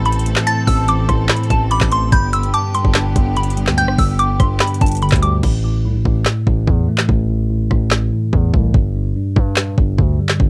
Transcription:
Already playing: A1 A2 E3 C4 A4
0.06 E3 B5, closed hi-hat
0.12 closed hi-hat
0.19 closed hi-hat
0.26 A3, closed hi-hat
0.36 snare, clap
0.47 A2 A5 A6, closed hi-hat
0.67 A1 A2 E6, kick, open hi-hat
0.88 A2 D6, closed hi-hat
1.09 A1 A2 C6, kick, cross-stick, closed hi-hat
1.29 A2 B5, snare, clap, closed hi-hat
1.36 closed hi-hat
1.43 closed hi-hat
1.50 A1 A5, kick, closed hi-hat
1.71 E3 B5 D6, closed hi-hat
1.81 A1, kick, snare, clap, closed hi-hat
1.92 A3 C6, closed hi-hat
2.12 G1 G2 D3 B3 G4 B5 G6, kick, closed hi-hat
2.33 G2 E6, closed hi-hat
2.43 closed hi-hat
2.54 G2 A5 D6, closed hi-hat
2.74 G2 C6, closed hi-hat
2.85 G1, kick
2.94 G2, snare, clap, closed hi-hat
3.16 G1 G2, kick, closed hi-hat
3.36 D3 B5, closed hi-hat
3.43 closed hi-hat
3.50 closed hi-hat
3.57 G3, closed hi-hat
3.67 D2, snare, clap
3.78 G2 G5 G6, closed hi-hat
3.83 G1
3.88 cross-stick
3.98 G1 G2 E6, kick, open hi-hat
4.19 G2 D6, closed hi-hat
4.40 G1 G2 C6, kick, cross-stick, closed hi-hat
4.60 G2 B5, snare, clap, closed hi-hat
4.67 closed hi-hat
4.74 closed hi-hat
4.81 G1 G2 A5, kick, closed hi-hat
4.86 closed hi-hat
4.88 closed hi-hat
4.92 closed hi-hat
4.95 closed hi-hat
4.97 closed hi-hat
5.02 D3 B5, closed hi-hat
5.09 D2, kick, snare, clap, closed hi-hat
5.16 closed hi-hat
5.22 G3 D6, closed hi-hat
5.43 A1 A2, kick, crash
5.65 A2
5.85 C2 A2
5.95 A1
6.05 A1 A2, kick
6.25 A2, snare, clap
6.47 A1 A2, kick
6.67 E2 E3, kick
6.88 A3
6.98 snare, clap
7.09 A1 A2, kick
7.29 A2
7.50 A2
7.71 A1 A2, kick, cross-stick
7.91 A2, snare, clap
8.13 A2
8.32 E2 E3, kick
8.54 C2 A3, kick
8.74 G1 G2, kick
8.95 G2
9.16 G2
9.36 G2, kick
9.56 G2, snare, clap
9.78 G1 G2, kick
9.98 D2 D3, kick
10.19 G3
10.29 snare, clap
10.40 G1 G2, kick

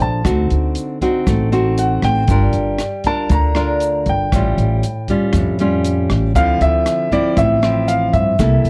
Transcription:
Already playing: F3 D4 A4 C5
0.00 A#1 A5, shaker
0.24 D2 D3 C4 D#4 F#4, kick, cross-stick, closed hi-hat, shaker
0.50 D2, closed hi-hat, shaker
0.75 closed hi-hat, shaker
1.01 C4 D#4 F#4, kick, closed hi-hat, shaker
1.26 A1 A3, kick, cross-stick, closed hi-hat, shaker
1.52 C4 D#4 F#4, closed hi-hat, shaker
1.78 F#5, closed hi-hat, shaker
2.02 A1 G5, kick, cross-stick, closed hi-hat, shaker
2.28 G1 G3 D4 F4 A#4, kick, closed hi-hat, shaker
2.53 G1, closed hi-hat, shaker
2.78 cross-stick, closed hi-hat, shaker
3.04 D4 F4 A#4 A5, kick, closed hi-hat, shaker
3.30 D2 D3 A#5, kick, closed hi-hat, shaker
3.55 D4 F4 A#4, cross-stick, closed hi-hat, shaker
3.80 closed hi-hat, shaker
4.06 G1 G5, kick, closed hi-hat, shaker
4.32 A1 A2 G3 C#4 F4, kick, cross-stick, closed hi-hat, shaker
4.57 A1, closed hi-hat, shaker
4.83 closed hi-hat, shaker
5.08 G3 C#4 F4, kick, closed hi-hat, shaker
5.33 F2, kick, cross-stick, closed hi-hat, shaker
5.38 A2
5.59 G3 C#4 F4, closed hi-hat, shaker
5.85 closed hi-hat, shaker
6.10 A1, kick, cross-stick, closed hi-hat, shaker
6.35 D2 D3 F3 C4 E4 F5, kick, closed hi-hat, shaker
6.61 D2 E5, closed hi-hat, shaker
6.86 cross-stick, closed hi-hat, shaker
7.12 F3 C4 E4 D5, kick, closed hi-hat, shaker
7.37 A1 A2 E5, kick, closed hi-hat, shaker
7.62 F3 C4 E4, cross-stick, closed hi-hat, shaker
7.88 F5, closed hi-hat, shaker
8.13 G2 E5, kick, closed hi-hat, shaker
8.39 C2 C3 A#3 E4 A4, kick, cross-stick, closed hi-hat, shaker
8.64 C2, closed hi-hat, shaker

